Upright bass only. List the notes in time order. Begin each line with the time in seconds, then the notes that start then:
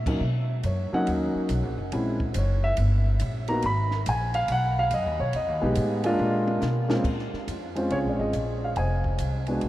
Already playing: A#2
0.20 B2
0.64 F#2
0.92 muted upright bass stroke
1.07 D#2
1.35 muted upright bass stroke
1.49 B1
1.63 A#1
1.78 F#1
1.92 A#1
2.35 F#1
2.78 G1
3.21 A#1
3.64 G#1
4.06 A#1
4.48 B1
4.91 F#2
5.06 D#2
5.20 B1
5.34 F2
5.48 D#2
5.62 B1
5.77 A2
6.19 A#2
6.62 B2
7.04 A#2
7.33 muted upright bass stroke
7.47 F2
7.91 C#2
8.05 A#1
8.19 G#1
8.33 A#1
8.77 F1
9.20 C2
9.62 B1